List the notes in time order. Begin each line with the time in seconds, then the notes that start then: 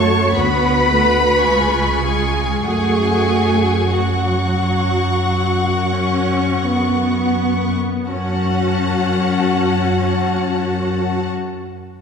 Already playing: F#2 A3 F#4 C#5 A5 C#6
0.34 D2 B3 F#4 B4 F#5 B5
0.91 A3
1.43 C#2 G#3 F4 G#5 C#6
2.03 G#4 G#5
2.64 F#2 A3 F#4 G#4 F#5 G#5 C#6
3.92 F#3 F#4 F#5 C#6
5.92 C#4
6.63 B3
8.08 F#2 C#4 F#4 F#5 A5